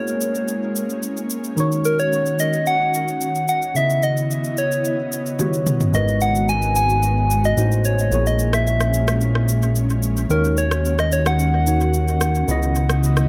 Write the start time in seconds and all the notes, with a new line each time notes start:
Already playing: G#3 A#3 C#4 E4 G#4 C#5
0.07 shaker
0.21 shaker
0.35 shaker
0.48 shaker
0.76 shaker
0.90 shaker
1.03 shaker
1.17 shaker
1.30 shaker
1.44 shaker
1.56 D#3 D#4 F#4 C#5, shaker
1.72 shaker
1.85 A#4, shaker
1.99 C#5, shaker
2.13 shaker
2.26 shaker
2.39 D#5, shaker
2.53 shaker
2.66 F#5, shaker
2.94 shaker
3.08 shaker
3.21 shaker
3.35 shaker
3.48 F#5, shaker
3.62 shaker
3.74 C#3 B3 E4 D#5 E5, shaker
3.90 shaker
4.03 D#5, shaker
4.17 shaker
4.31 shaker
4.44 shaker
4.57 C#5, shaker
4.72 shaker
4.85 shaker
5.12 shaker
5.26 shaker
5.39 D#3 G3 B3 C#4 F#4 G4 C#5 F#5, high tom, shaker
5.53 shaker
5.66 mid tom, shaker
5.80 floor tom, shaker
5.93 G#1 G#3 B3 F#4 A#4 B4 D#5 A#5, shaker
6.08 shaker
6.21 F#5, shaker
6.35 shaker
6.49 G#5, shaker
6.62 shaker
6.75 G#5, shaker
6.89 shaker
7.03 shaker
7.30 shaker
7.44 D#5, shaker
7.57 A1 A3 C4 D#4 F#4 C5, shaker
7.72 shaker
7.84 C#5, shaker
7.99 shaker
8.11 A#1 G#3 A#3 C#4 E4 G#4 C#5, shaker
8.26 D#5, shaker
8.39 shaker
8.53 E5, cross-stick, shaker
8.67 E5, shaker
8.80 cross-stick, shaker
8.94 shaker
9.08 cross-stick, shaker
9.21 shaker
9.35 cross-stick
9.48 shaker
9.62 shaker
9.76 shaker
9.90 shaker
10.03 shaker
10.17 shaker
10.29 D#2 D#3 D#4 F#4 A#4 C#5, shaker
10.44 shaker
10.57 C#5, shaker
10.71 cross-stick, shaker
10.85 shaker
10.99 D#5, cross-stick, shaker
11.12 C#5, shaker
11.26 F#5, cross-stick, shaker
11.39 shaker
11.67 D#3 D#4 F#4 A#4, shaker
11.81 shaker
11.94 shaker
12.08 shaker
12.21 cross-stick, shaker
12.35 shaker
12.47 C#2 C#3 B3 E4 D#5, shaker
12.63 shaker
12.75 shaker
12.89 cross-stick, shaker
13.03 shaker
13.17 cross-stick, shaker